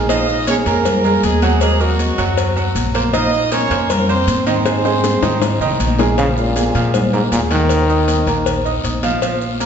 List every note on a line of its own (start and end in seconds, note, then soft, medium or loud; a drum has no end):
0.00 0.60 A#1 medium
0.09 0.40 F3 medium
0.09 0.45 D#4 medium
0.09 0.41 F4 medium
0.09 0.45 D#5 loud
0.09 0.41 F5 medium
0.09 cowbell loud
0.09 high conga soft
0.09 long guiro medium
0.09 maracas medium
0.29 maracas soft
0.47 0.63 G#3 medium
0.47 0.56 C#4 medium
0.47 0.63 G#4 medium
0.47 0.64 A#4 medium
0.47 0.56 C#5 loud
0.47 cowbell medium
0.47 high conga loud
0.47 short guiro medium
0.47 maracas medium
0.66 1.19 F2 loud
0.66 0.98 G#3 medium
0.66 1.20 A#3 medium
0.66 0.98 G#4 medium
0.66 1.20 A#4 loud
0.66 0.98 A#4 medium
0.66 cowbell medium
0.66 short guiro medium
0.66 maracas soft
0.85 cowbell loud
0.85 high conga soft
0.85 low conga medium
0.85 maracas medium
1.04 1.36 G#3 medium
1.04 1.36 G#4 medium
1.04 1.36 A#4 medium
1.04 high conga soft
1.04 low conga medium
1.04 maracas soft
1.23 2.12 D#2 loud
1.23 1.61 G#3 medium
1.23 1.60 G#4 medium
1.23 cowbell medium
1.23 high conga medium
1.23 short guiro medium
1.23 maracas medium
1.42 1.58 F#3 loud
1.42 1.58 F#4 loud
1.42 1.58 F#5 loud
1.42 cowbell medium
1.42 high conga medium
1.42 short guiro medium
1.42 maracas soft
1.61 1.80 G#3 medium
1.61 1.77 A#3 medium
1.61 1.79 G#4 loud
1.61 1.77 A#4 medium
1.61 1.78 D#5 medium
1.61 cowbell loud
1.61 high conga soft
1.61 long guiro medium
1.61 maracas medium
1.80 2.57 F#3 medium
1.80 2.12 A#3 medium
1.80 2.57 F#4 medium
1.80 2.12 A#4 medium
1.80 2.12 D#5 medium
1.80 high conga soft
1.80 maracas soft
1.99 cowbell medium
1.99 high conga medium
1.99 short guiro medium
1.99 maracas medium
2.18 2.71 F#2 loud
2.18 2.49 F#3 loud
2.18 2.50 F#4 medium
2.18 2.50 F#5 loud
2.18 cowbell medium
2.18 high conga soft
2.18 short guiro medium
2.18 maracas soft
2.37 cowbell loud
2.37 high conga soft
2.37 long guiro medium
2.37 maracas medium
2.56 2.88 F#3 medium
2.56 2.88 F#4 medium
2.56 2.88 F#5 medium
2.56 maracas soft
2.75 3.64 A#1 loud
2.75 cowbell medium
2.75 high conga medium
2.75 short guiro medium
2.75 maracas medium
2.94 3.10 A#3 medium
2.94 3.10 A#4 medium
2.94 3.11 C5 medium
2.94 cowbell medium
2.94 high conga medium
2.94 short guiro medium
2.94 maracas soft
3.13 3.45 F3 medium
3.13 3.50 D#4 medium
3.13 3.45 F4 medium
3.13 3.49 D#5 loud
3.13 3.45 F5 medium
3.13 cowbell loud
3.13 high conga soft
3.13 maracas medium
3.33 maracas soft
3.51 3.67 A#3 medium
3.51 3.88 C#4 medium
3.51 3.67 A#4 medium
3.51 3.68 C5 medium
3.51 3.88 C#5 loud
3.51 cowbell medium
3.51 high conga loud
3.51 short guiro medium
3.51 maracas medium
3.70 4.23 F2 loud
3.70 4.02 A#3 medium
3.70 4.02 A#4 medium
3.70 4.02 C5 medium
3.70 cowbell medium
3.70 short guiro medium
3.70 maracas soft
3.90 4.10 A#3 medium
3.90 4.09 A#4 loud
3.90 cowbell loud
3.90 high conga soft
3.90 low conga medium
3.90 long guiro medium
3.90 maracas medium
4.09 4.40 A#3 medium
4.09 4.45 C4 medium
4.09 4.40 A#4 medium
4.09 4.40 C5 medium
4.09 4.44 C5 loud
4.09 high conga soft
4.09 maracas soft
4.27 5.17 G#2 loud
4.27 cowbell medium
4.27 high conga medium
4.27 short guiro medium
4.27 maracas medium
4.46 4.62 D#3 loud
4.46 5.77 C4 medium
4.46 4.62 D#4 loud
4.46 5.76 C5 medium
4.46 4.63 D#5 loud
4.46 cowbell medium
4.46 high conga medium
4.46 short guiro medium
4.46 maracas soft
4.66 4.81 G#3 medium
4.66 4.82 G#4 medium
4.66 4.82 C5 medium
4.66 cowbell loud
4.66 high bongo medium
4.66 high conga soft
4.66 long guiro medium
4.66 maracas medium
4.84 5.16 G#3 medium
4.84 5.16 G#4 medium
4.84 5.16 C5 medium
4.84 high bongo loud
4.84 high conga soft
4.84 maracas soft
5.04 cowbell medium
5.04 high bongo medium
5.04 high conga medium
5.04 short guiro medium
5.04 maracas medium
5.22 5.58 G#2 loud
5.22 5.54 D#3 medium
5.22 5.54 D#4 medium
5.22 5.54 D#5 loud
5.22 cowbell medium
5.22 low bongo loud
5.22 high conga soft
5.22 short guiro medium
5.22 maracas soft
5.42 cowbell loud
5.42 low bongo loud
5.42 high conga soft
5.42 long guiro medium
5.42 maracas medium
5.60 5.78 C2 medium
5.60 5.92 D#3 loud
5.60 5.92 D#4 loud
5.60 5.92 D#5 loud
5.60 high conga soft
5.60 maracas soft
5.79 6.69 A#1 loud
5.79 cowbell medium
5.79 high conga medium
5.79 short guiro medium
5.79 maracas medium
5.99 6.14 G#3 medium
5.99 6.15 G#4 medium
5.99 6.15 A#4 medium
5.99 cowbell medium
5.99 low bongo loud
5.99 high conga medium
5.99 short guiro medium
5.99 maracas soft
6.18 6.27 C#3 loud
6.18 6.49 F3 medium
6.18 6.49 F4 medium
6.18 6.49 F5 medium
6.18 cowbell loud
6.18 high conga soft
6.18 long guiro medium
6.18 maracas medium
6.37 6.91 A#2 medium
6.37 high conga soft
6.37 maracas soft
6.56 6.71 G#3 medium
6.56 6.72 G#4 medium
6.56 6.72 G#5 medium
6.56 cowbell medium
6.56 high conga loud
6.56 short guiro medium
6.56 maracas medium
6.75 7.28 A#2 loud
6.75 7.06 F3 medium
6.75 7.06 F4 medium
6.75 7.07 F5 medium
6.75 cowbell medium
6.75 short guiro medium
6.75 maracas soft
6.94 7.03 G#2 medium
6.94 cowbell loud
6.94 high conga soft
6.94 low conga medium
6.94 long guiro medium
6.94 maracas medium
7.13 7.22 G#2 medium
7.13 7.29 A#3 medium
7.13 7.29 A#4 medium
7.13 7.29 A#5 medium
7.13 high conga soft
7.13 maracas soft
7.32 8.21 D#2 medium
7.32 7.41 A#2 loud
7.32 7.48 G#3 medium
7.32 7.48 G#4 medium
7.32 7.48 G#5 medium
7.32 cowbell medium
7.32 high conga medium
7.32 short guiro medium
7.32 maracas medium
7.51 8.61 D#3 loud
7.51 7.82 F#4 medium
7.51 7.82 F#5 medium
7.51 7.83 F#6 medium
7.51 cowbell medium
7.51 short guiro medium
7.51 maracas soft
7.69 cowbell loud
7.69 high conga soft
7.69 long guiro medium
7.69 maracas medium
7.89 8.20 D#4 medium
7.89 8.20 D#5 medium
7.89 8.21 D#6 medium
7.89 maracas soft
8.08 cowbell medium
8.08 high conga medium
8.08 short guiro medium
8.08 maracas medium
8.27 8.80 A#1 loud
8.27 8.59 A#3 medium
8.27 8.59 A#4 medium
8.27 8.59 A#5 medium
8.27 cowbell medium
8.27 short guiro medium
8.27 maracas soft
8.46 cowbell loud
8.46 high conga soft
8.46 long guiro medium
8.46 maracas medium
8.65 8.96 D#4 medium
8.65 8.97 D#5 medium
8.65 8.97 D#6 medium
8.65 high conga soft
8.65 maracas soft
8.84 9.66 A#1 loud
8.84 cowbell medium
8.84 high conga medium
8.84 short guiro medium
8.84 maracas medium
9.03 9.19 F3 loud
9.03 9.19 F4 loud
9.03 9.19 F5 medium
9.03 cowbell medium
9.03 high conga medium
9.03 short guiro medium
9.03 maracas soft
9.22 9.54 F3 medium
9.22 9.54 F4 medium
9.22 9.54 F5 medium
9.22 cowbell loud
9.22 high conga soft
9.22 maracas medium
9.42 high conga soft
9.42 maracas soft
9.60 9.66 A#3 medium
9.60 9.66 A#4 medium
9.60 9.66 A#5 medium
9.60 cowbell medium
9.60 high conga loud
9.60 short guiro medium
9.60 maracas medium